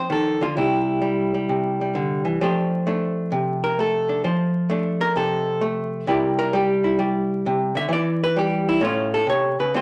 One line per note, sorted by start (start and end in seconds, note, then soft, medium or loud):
0.00 0.55 F3 medium
0.00 0.41 F4 medium
0.00 0.12 A4 soft
0.00 0.11 C5 medium
0.10 0.41 D#3 medium
0.10 0.42 A4 medium
0.41 0.56 D3 medium
0.41 0.57 F4 medium
0.57 1.48 C3 medium
0.57 1.01 G3 soft
0.57 1.95 E4 medium
1.02 1.34 G3 medium
1.34 1.81 G3 soft
1.49 2.39 C3 medium
1.81 2.42 G3 soft
1.95 2.24 D3 medium
2.25 2.40 E3 medium
2.41 4.23 F3 medium
2.41 2.86 A3 soft
2.41 2.87 D4 soft
2.41 4.27 G4 soft
2.41 3.63 C5 soft
2.87 3.78 A3 medium
2.87 4.09 D4 soft
3.32 4.22 C3 medium
3.64 3.78 A#4 medium
3.79 4.69 A3 medium
3.79 4.24 A4 medium
4.09 4.27 D4 soft
4.24 6.06 F3 medium
4.24 5.01 C5 soft
4.70 5.60 A3 medium
4.70 6.08 D4 medium
5.01 5.16 A#4 loud
5.16 6.06 C3 medium
5.16 5.62 A4 medium
5.61 6.05 A3 medium
6.07 7.45 C3 medium
6.07 6.53 G3 soft
6.07 6.83 E4 medium
6.07 6.37 A#4 soft
6.07 6.98 D5 medium
6.39 6.53 A#4 medium
6.53 6.98 G3 medium
6.53 7.00 G4 medium
6.84 7.89 E4 soft
6.99 7.75 G3 medium
6.99 7.76 D5 soft
7.46 7.76 C3 medium
7.75 7.88 D3 medium
7.75 7.91 E5 medium
7.89 8.79 E3 medium
7.93 8.22 D5 medium
8.24 8.38 B4 medium
8.36 8.81 G3 medium
8.36 8.68 G4 medium
8.69 8.83 E4 medium
8.81 9.26 A2 medium
8.81 9.75 A3 soft
8.81 9.72 C#4 soft
8.81 9.14 F4 medium
9.14 9.29 A4 medium
9.27 9.58 C3 medium
9.27 9.60 C#5 loud
9.59 9.74 C#3 soft
9.59 9.74 B4 medium
9.74 9.81 D3 medium
9.74 9.81 A3 soft
9.74 9.81 C4 medium
9.74 9.81 F4 medium
9.74 9.81 C5 medium